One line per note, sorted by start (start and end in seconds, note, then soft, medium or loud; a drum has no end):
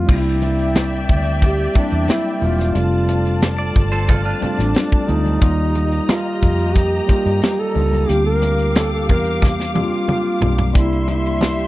0.00 0.11 F3 medium
0.00 0.06 G3 medium
0.00 0.11 A3 medium
0.00 0.08 C4 medium
0.00 0.09 E4 medium
0.00 0.12 F4 loud
0.00 0.11 E5 medium
0.06 1.05 C2 loud
0.06 2.73 C3 medium
0.06 0.94 G3 medium
0.06 0.94 A#3 medium
0.06 2.73 A#3 medium
0.06 0.95 C4 medium
0.06 0.95 D4 medium
0.06 0.95 E4 medium
0.06 2.71 D5 medium
0.06 2.71 E5 medium
0.06 2.73 E5 medium
0.06 2.71 G5 medium
0.06 kick loud
0.06 crash medium
0.10 0.43 E4 loud
0.42 1.06 E4 medium
0.42 closed hi-hat medium
0.42 muted conga soft
0.59 closed hi-hat soft
0.76 snare loud
0.76 closed hi-hat medium
0.76 high conga medium
0.93 closed hi-hat soft
1.09 1.66 D2 medium
1.09 kick medium
1.09 closed hi-hat medium
1.09 low conga medium
1.25 closed hi-hat soft
1.42 1.79 G4 loud
1.42 kick medium
1.42 closed hi-hat medium
1.42 muted conga medium
1.74 2.18 G3 medium
1.74 2.18 A#3 medium
1.74 2.18 C4 medium
1.74 2.19 D4 medium
1.74 2.13 D4 medium
1.74 2.19 E4 medium
1.74 muted fingered electric bass stroke soft
1.74 kick medium
1.74 closed hi-hat medium
1.74 muted conga soft
1.92 2.06 E2 medium
1.92 closed hi-hat medium
2.08 2.37 E4 medium
2.08 snare loud
2.08 closed hi-hat medium
2.08 high conga medium
2.26 closed hi-hat soft
2.37 2.62 G3 medium
2.37 2.63 A#3 medium
2.37 2.63 C4 medium
2.37 2.46 E4 medium
2.41 2.71 E1 medium
2.41 2.63 D4 medium
2.41 2.64 E4 medium
2.41 3.77 F4 loud
2.41 open hi-hat soft
2.41 high conga medium
2.59 snare soft
2.59 closed hi-hat medium
2.59 high conga medium
2.73 3.71 F1 loud
2.73 5.39 F3 medium
2.73 3.60 G3 medium
2.73 3.61 A3 medium
2.73 3.61 C4 medium
2.73 5.39 C4 medium
2.73 3.61 D4 medium
2.73 3.61 F4 medium
2.73 5.38 F4 medium
2.73 5.39 A4 medium
2.73 5.38 D5 medium
2.73 5.38 A5 medium
2.73 closed hi-hat loud
2.73 muted conga soft
2.93 closed hi-hat soft
3.08 closed hi-hat medium
3.08 muted conga soft
3.26 closed hi-hat soft
3.42 snare loud
3.42 closed hi-hat medium
3.42 high conga medium
3.58 3.90 D5 medium
3.76 4.33 G1 medium
3.76 kick medium
3.76 closed hi-hat medium
3.76 low conga medium
3.92 4.07 A4 medium
3.92 4.08 C5 medium
3.92 closed hi-hat soft
4.08 4.24 F4 medium
4.08 4.24 A4 medium
4.08 kick medium
4.08 closed hi-hat medium
4.08 muted conga medium
4.08 low conga medium
4.25 5.22 D4 medium
4.25 5.21 F4 medium
4.41 4.85 G3 medium
4.41 4.85 A3 medium
4.41 4.85 C4 medium
4.41 4.85 D4 medium
4.41 4.86 F4 medium
4.41 4.58 F4 medium
4.41 muted fingered electric bass stroke soft
4.41 closed hi-hat medium
4.41 muted conga soft
4.41 low conga medium
4.58 4.73 A1 medium
4.58 5.11 D4 medium
4.58 snare soft
4.58 closed hi-hat medium
4.74 snare loud
4.74 closed hi-hat medium
4.74 high conga medium
4.92 kick loud
5.07 5.37 D2 medium
5.07 5.30 G3 medium
5.07 5.30 A3 medium
5.07 5.30 C4 medium
5.07 5.30 D4 medium
5.07 6.11 D#4 loud
5.07 5.30 F4 medium
5.07 closed hi-hat medium
5.07 high conga medium
5.26 closed hi-hat medium
5.26 high conga soft
5.40 5.99 D#2 loud
5.40 8.06 D#3 medium
5.40 6.27 G3 medium
5.40 6.28 A#3 medium
5.40 8.06 A#3 medium
5.40 6.28 D#4 medium
5.40 6.29 F4 medium
5.40 10.71 G4 medium
5.40 8.05 G4 medium
5.40 6.28 D5 medium
5.40 8.05 D#5 medium
5.40 8.05 A#5 medium
5.40 kick loud
5.40 closed hi-hat loud
5.40 muted conga soft
5.75 closed hi-hat medium
5.75 muted conga soft
5.92 closed hi-hat soft
6.09 6.77 F4 medium
6.09 snare loud
6.09 closed hi-hat medium
6.09 high conga medium
6.43 6.99 F2 medium
6.43 kick medium
6.43 closed hi-hat medium
6.43 low conga medium
6.59 closed hi-hat medium
6.76 7.42 G4 loud
6.76 kick medium
6.76 closed hi-hat medium
6.76 muted conga medium
7.06 7.51 G3 medium
7.06 7.51 A#3 medium
7.06 7.52 D#4 medium
7.06 7.52 F4 medium
7.06 7.51 D5 medium
7.06 muted fingered electric bass stroke soft
7.06 kick medium
7.06 closed hi-hat medium
7.06 muted conga soft
7.26 7.40 G2 medium
7.26 closed hi-hat medium
7.42 7.61 G4 medium
7.42 snare loud
7.42 closed hi-hat medium
7.42 high conga medium
7.60 8.11 A4 medium
7.74 8.04 C#2 medium
7.74 7.96 G3 medium
7.74 7.96 A#3 medium
7.74 7.97 D4 medium
7.74 7.97 D#4 medium
7.74 7.97 F4 medium
7.74 open hi-hat soft
7.74 high conga medium
7.93 closed hi-hat medium
7.93 high conga medium
8.08 9.09 D2 loud
8.08 8.94 G3 medium
8.08 8.95 A#3 medium
8.08 11.67 A#3 medium
8.08 8.95 C4 medium
8.08 8.95 D4 medium
8.08 8.16 E4 medium
8.08 10.71 G4 medium
8.08 8.25 G4 loud
8.08 10.71 F5 medium
8.08 10.71 D6 medium
8.08 closed hi-hat medium
8.16 8.98 F4 medium
8.26 8.78 A#4 loud
8.42 closed hi-hat medium
8.42 muted conga soft
8.59 closed hi-hat soft
8.76 8.93 A4 loud
8.76 snare loud
8.76 closed hi-hat medium
8.76 high conga medium
8.94 9.08 A4 medium
9.09 9.88 E2 medium
9.09 9.46 A#4 medium
9.09 kick medium
9.09 closed hi-hat medium
9.09 low conga medium
9.25 closed hi-hat medium
9.42 kick medium
9.42 snare medium
9.42 muted conga medium
9.42 low conga medium
9.60 snare medium
9.74 10.18 G3 medium
9.74 10.18 A#3 medium
9.74 10.18 C4 medium
9.74 10.18 D4 medium
9.74 10.19 F4 medium
9.74 10.72 F4 loud
9.74 high tom medium
9.74 muted conga soft
9.74 low conga medium
10.08 mid tom medium
10.08 high conga medium
10.41 10.75 B1 medium
10.41 10.63 G3 medium
10.41 10.63 A#3 medium
10.41 10.63 C4 medium
10.41 10.64 D4 medium
10.41 10.64 F4 medium
10.41 floor tom medium
10.41 high conga medium
10.58 floor tom medium
10.58 high conga medium
10.73 11.67 C2 loud
10.73 11.67 C3 medium
10.73 11.60 G3 medium
10.73 11.61 A#3 medium
10.73 11.61 C4 medium
10.73 11.61 D4 medium
10.73 11.62 E4 medium
10.73 11.07 E4 medium
10.73 11.67 G4 medium
10.73 11.67 D5 medium
10.73 11.67 E5 medium
10.73 11.67 C6 medium
10.73 kick loud
10.73 closed hi-hat loud
10.73 muted conga soft
10.93 closed hi-hat soft
11.08 11.67 E4 medium
11.08 closed hi-hat medium
11.08 muted conga soft
11.26 closed hi-hat soft
11.41 snare loud
11.41 closed hi-hat medium
11.41 high conga medium
11.59 closed hi-hat soft